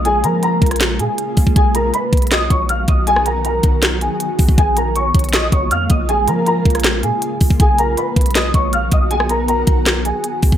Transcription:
<<
  \new Staff \with { instrumentName = "Grand piano" } { \time 4/4 \key ces \lydian \tempo 4 = 159 <aes' aes''>8 <bes' bes''>8 <bes' bes''>4. <aes' aes''>4. | <aes' aes''>8 <bes' bes''>8 <b' b''>4 <dis'' dis'''>8 <des'' des'''>8 <f'' f'''>8 <dis'' dis'''>8 | <aes' aes''>8 <bes' bes''>8 <bes' bes''>4. <aes' aes''>4. | <aes' aes''>8 <bes' bes''>8 <des'' des'''>4 <ees'' ees'''>8 <des'' des'''>8 <f'' f'''>8 <ees'' ees'''>8 |
<aes' aes''>8 <bes' bes''>8 <bes' bes''>4. <aes' aes''>4. | <aes' aes''>8 <bes' bes''>8 <b' b''>4 <dis'' dis'''>8 <des'' des'''>8 <f'' f'''>8 <dis'' dis'''>8 | <aes' aes''>8 <bes' bes''>8 <bes' bes''>4. <aes' aes''>4. | }
  \new Staff \with { instrumentName = "Ambient pad" } { \time 4/4 \key ces \lydian <des aes bes f'>1 | <dis fis b fis'>1~ | <dis fis b fis'>1 | <des aes bes f'>1~ |
<des aes bes f'>1 | <dis fis b fis'>1~ | <dis fis b fis'>1 | }
  \new Staff \with { instrumentName = "808-style bass" } { \clef bass \time 4/4 \key ces \lydian bes,,8 f4 bes,,4 bes,16 r8. bes,,16 bes,,16 | b,,4 r8 b,,4 bes,,4 b,,8~ | b,,4. b,,4~ b,,16 r8. b,,16 b,,16 | bes,,4. bes,,4 bes,,8 f,8 bes,,8~ |
bes,,8 f4 bes,,4 bes,16 r8. bes,,16 bes,,16 | b,,4 r8 b,,4 bes,,4 b,,8~ | b,,4. b,,4~ b,,16 r8. b,,16 b,,16 | }
  \new DrumStaff \with { instrumentName = "Drums" } \drummode { \time 4/4 hh8 hh8 hh8 <hh bd>32 hh32 <hh ss>32 hh32 <hc hh sn>8 hh8 hh8 <hho bd>16 bd16 | <hh bd>8 hh8 hh8 <hh bd>32 hh32 hh32 hh32 <hc hh sn>8 <hh bd>8 hh8 <hh bd>8 | hh16 ss16 hh8 hh8 <hh bd>8 <hc hh sn>8 hh8 hh8 <hho bd>16 bd16 | <hh bd>8 hh8 hh8 <hh bd>32 hh32 hh32 hh32 <hc hh sn>8 <hh bd>8 hh8 <hh bd>8 |
hh8 hh8 hh8 <hh bd>32 hh32 <hh ss>32 hh32 <hc hh sn>8 hh8 hh8 <hho bd>16 bd16 | <hh bd>8 hh8 hh8 <hh bd>32 hh32 hh32 hh32 <hc hh sn>8 <hh bd>8 hh8 <hh bd>8 | hh16 ss16 hh8 hh8 <hh bd>8 <hc hh sn>8 hh8 hh8 <hho bd>16 bd16 | }
>>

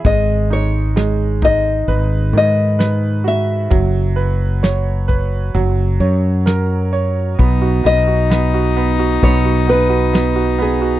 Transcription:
<<
  \new Staff \with { instrumentName = "Nylon-string guitar" } { \time 4/4 \key b \major \tempo 4 = 65 dis''8 cis''4 dis''4 dis''4 e''8~ | e''2.~ e''8 r8 | r8 dis''4. cis''8 b'4 gis'8 | }
  \new Staff \with { instrumentName = "Grand piano" } { \time 4/4 \key b \major gis8 dis'8 gis8 dis'8 b'8 dis8 b'8 fis'8 | fis8 b'8 cis''8 b'8 fis8 cis''8 ais'8 cis''8 | b16 fis'16 b16 fis'16 b16 fis'16 b16 fis'16 b16 fis'16 b16 fis'16 b16 fis'16 b16 fis'16 | }
  \new Staff \with { instrumentName = "Viola" } { \time 4/4 \key b \major r1 | r1 | dis'1 | }
  \new Staff \with { instrumentName = "Fretless electric bass" } { \clef bass \time 4/4 \key b \major gis,,2 gis,,8 gis,4. | fis,,2 fis,,8 fis,4. | b,,8 b,,4. b,,2 | }
  \new DrumStaff \with { instrumentName = "Drums" } \drummode { \time 4/4 <hh bd>8 hh8 <hh sn>8 <hh bd>8 hh8 hh8 <hh sn>8 hh8 | <hh bd>8 hh8 <hh sn>8 <hh bd>8 hh8 hh8 <hh sn>8 hh8 | <hh bd>8 hh8 <hh sn>8 hh8 <hh bd>8 hh8 <hh sn>8 hh8 | }
>>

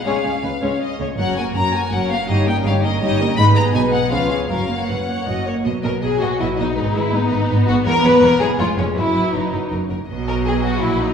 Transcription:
<<
  \new Staff \with { instrumentName = "Violin section" } { \time 3/4 \key fis \major \tempo 4 = 162 eis''2 r4 | fis''8 gis''8 ais''8 gis''8 fis''8 eis''8 | dis''8 g''8 eis''8 dis''8 dis''4 | b''8 ais''8 gis''8 fis''8 eis''8 eis''8 |
eis''4 fis''4. r8 | \key b \major dis''8 dis''8 dis''8 dis''8 dis''8 dis''8 | b'8 b'8 b'8 b'8 b'8 b'8 | cis''8 cis''8 cis''8 cis''8 cis''8 cis''8 |
b'8 b'8 b'8 b'8 ais'8 ais'8 | dis''2. | }
  \new Staff \with { instrumentName = "Violin section" } { \time 3/4 \key fis \major <gis' cis''>8 <gis' cis''>8 b'8 cis''8 dis''8 cis''8 | <ais' cis''>8 <fis' ais'>8 <ais' cis''>8 <fis' ais'>8 <ais' cis''>8 <fis' ais'>8 | <g' cis''>8 <ais' dis''>8 <g' cis''>8 <ais' dis''>8 <g' cis''>8 <ais' dis''>8 | b'8 <gis' dis''>8 b'8 <gis' dis''>8 <eis' b'>8 <gis' cis''>8 |
ais'8 <fis' cis''>8 b'8 cis''8 dis''8 cis''8 | \key b \major r8 ais'8 gis'8 fis'8 e'8 dis'8~ | dis'8 e'8 dis'4. fis'8 | ais'8 b'8 ais'8 gis'8 eis'8 cis'8 |
e'4 dis'4 r4 | r8 ais'8 gis'8 fis'8 e'8 dis'8 | }
  \new Staff \with { instrumentName = "Viola section" } { \time 3/4 \key fis \major <gis cis'>8 <gis cis'>8 <gis cis'>8 <gis cis'>8 r8 <gis cis'>8 | <fis cis'>8 ais8 <fis cis'>8 ais8 <fis cis'>8 ais8 | <g dis'>8 <ais cis'>8 <g dis'>8 <ais cis'>8 <g dis'>8 <ais cis'>8 | <gis dis'>8 b8 <gis dis'>8 b8 <eis cis'>8 <gis b>8 |
<fis cis'>8 ais8 <fis cis'>8 ais8 <fis cis'>8 ais8 | \key b \major fis2. | gis4 b2~ | b2 gis4 |
fis2~ fis8 r8 | fis2. | }
  \new Staff \with { instrumentName = "Cello section" } { \clef bass \time 3/4 \key fis \major cis8 cis8 cis8 cis8 r8 cis8 | fis,4 fis,4 fis,4 | g,4 g,4 g,4 | gis,4 b,4 cis4 |
fis,4 fis,4 fis,4 | \key b \major b,8 b,8 b,8 b,8 b,8 b,8 | gis,8 gis,8 gis,8 gis,8 gis,8 gis,8 | e,8 e,8 e,8 e,8 eis,8 eis,8 |
fis,8 fis,8 fis,8 fis,8 fis,8 fis,8 | b,2 ais,4 | }
  \new Staff \with { instrumentName = "Double bass section" } { \clef bass \time 3/4 \key fis \major cis,8 cis,8 cis,8 cis,8 r8 cis,8 | fis,,4 fis,,4 fis,,4 | g,,4 g,,4 g,,4 | gis,,4 b,,4 cis,4 |
fis,,4 fis,,4 fis,,4 | \key b \major b,,8 b,,8 b,,8 b,,8 b,,8 b,,8 | gis,,8 gis,,8 gis,,8 gis,,8 gis,,8 gis,,8 | e,,8 e,,8 e,,8 e,,8 eis,,8 eis,,8 |
fis,,8 fis,,8 fis,,8 fis,,8 fis,,8 fis,,8 | b,,2 ais,,4 | }
>>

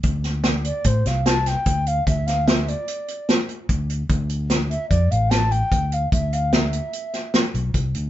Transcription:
<<
  \new Staff \with { instrumentName = "Flute" } { \time 5/4 \key d \dorian \tempo 4 = 148 r4. d''8 c''8 f''8 a''8 g''4 f''8 | e''8 f''8 e''8 d''4. r2 | r4. e''8 d''8 f''8 a''8 g''4 f''8 | e''8 f''8 e''2 r2 | }
  \new Staff \with { instrumentName = "Fingered electric bass" } { \clef bass \time 5/4 \key d \dorian d,2 a,8 c,4. d,4 | d,2 r2 d,4 | d,2 f,8 a,,4. d,4 | d,2 r4. b,,8 c,8 d,8 | }
  \new DrumStaff \with { instrumentName = "Drums" } \drummode { \time 5/4 <hh bd>8 <hh sn>8 <hh sn>8 hh8 <hh bd>8 <hh sn>8 <hh sn>8 <hh sn>8 <hh bd>8 hh8 | <hh bd>8 <hh sn>8 <hh sn>8 hh8 hh8 hh8 <hh sn>8 hh8 <hh bd>8 hh8 | <hh bd>8 hh8 <hh sn>8 hh8 <hh bd>8 hh8 <hh sn>8 hh8 <hh bd>8 hh8 | <hh bd>8 hh8 <hh sn>8 hh8 hh8 <hh sn>8 <hh sn>8 hh8 <hh bd>8 hh8 | }
>>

